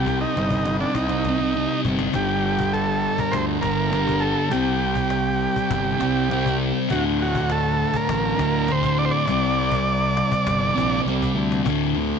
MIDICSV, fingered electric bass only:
0, 0, Header, 1, 2, 480
1, 0, Start_track
1, 0, Tempo, 594059
1, 1737, Time_signature, 4, 2, 24, 8
1, 9851, End_track
2, 0, Start_track
2, 0, Title_t, "Fingered electric bass"
2, 0, Program_c, 0, 33
2, 0, Note_on_c, 0, 36, 93
2, 192, Note_off_c, 0, 36, 0
2, 296, Note_on_c, 0, 31, 72
2, 674, Note_off_c, 0, 31, 0
2, 768, Note_on_c, 0, 36, 73
2, 1338, Note_off_c, 0, 36, 0
2, 1490, Note_on_c, 0, 31, 67
2, 1682, Note_off_c, 0, 31, 0
2, 1728, Note_on_c, 0, 31, 81
2, 2487, Note_off_c, 0, 31, 0
2, 2696, Note_on_c, 0, 38, 85
2, 2885, Note_off_c, 0, 38, 0
2, 2931, Note_on_c, 0, 31, 87
2, 3500, Note_off_c, 0, 31, 0
2, 3651, Note_on_c, 0, 36, 81
2, 4410, Note_off_c, 0, 36, 0
2, 4608, Note_on_c, 0, 31, 91
2, 4801, Note_off_c, 0, 31, 0
2, 4854, Note_on_c, 0, 36, 82
2, 5422, Note_off_c, 0, 36, 0
2, 5581, Note_on_c, 0, 38, 100
2, 6335, Note_off_c, 0, 38, 0
2, 6538, Note_on_c, 0, 33, 85
2, 6727, Note_off_c, 0, 33, 0
2, 6778, Note_on_c, 0, 38, 80
2, 7345, Note_off_c, 0, 38, 0
2, 7498, Note_on_c, 0, 36, 95
2, 8253, Note_off_c, 0, 36, 0
2, 8457, Note_on_c, 0, 31, 91
2, 8646, Note_off_c, 0, 31, 0
2, 8695, Note_on_c, 0, 34, 87
2, 8912, Note_off_c, 0, 34, 0
2, 8927, Note_on_c, 0, 36, 71
2, 9148, Note_off_c, 0, 36, 0
2, 9169, Note_on_c, 0, 38, 75
2, 9388, Note_off_c, 0, 38, 0
2, 9421, Note_on_c, 0, 38, 88
2, 9797, Note_off_c, 0, 38, 0
2, 9851, End_track
0, 0, End_of_file